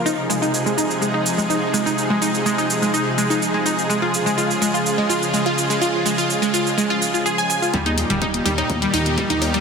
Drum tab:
HH |----------------|----------------|----------------|----------------|
SH |x-xxxxxxx-xxx-xx|x-xxxxxxx-xxx-xx|x-xxxxxxx-xxx-xx|x-xxxxxxx-xxxxxx|
CB |----------------|----------------|----------------|----------------|
CG |----------------|----------------|----------------|----------------|
BD |----------------|----------------|----------------|----------------|

HH |xxoxxxoxxxoxxxox|
SH |----------------|
CB |-------xx-----x-|
CG |-o---o--o--o--o-|
BD |o---o---o---o---|